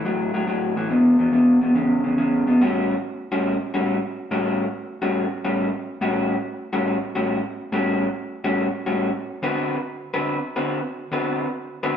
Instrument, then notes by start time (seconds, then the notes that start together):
clean electric guitar
0.05 A2 F#3
0.34 A2 F#3
0.47 A2 F#3
0.76 A2 E3
0.90 E2 B2
1.19 E2 B2
1.32 E2 B2
1.61 E2 B2
1.75 E2 C#3
2.04 E2 C#3
2.18 E2 C#3
2.47 E2 B2
2.61 A2 G3 C#4 F#4
3.32 A2 G3 C#4 F#4
3.74 A2 G3 C#4 F#4
4.31 A2 G3 C#4 F#4
5.02 A2 G3 C#4 F#4
5.45 A2 G3 C#4 F#4
6.01 A2 G3 C#4 F#4
6.73 A2 G3 C#4 F#4
7.15 A2 G3 C#4 F#4
7.72 A2 G3 C#4 F#4
8.44 A2 G3 C#4 F#4
8.86 A2 G3 C#4 F#4
9.43 D3 C4 F#4 B4
10.14 D3 C4 F#4 B4
10.56 D3 C4 F#4 B4
11.12 D3 C4 F#4 B4
11.83 D3 C4 F#4 B4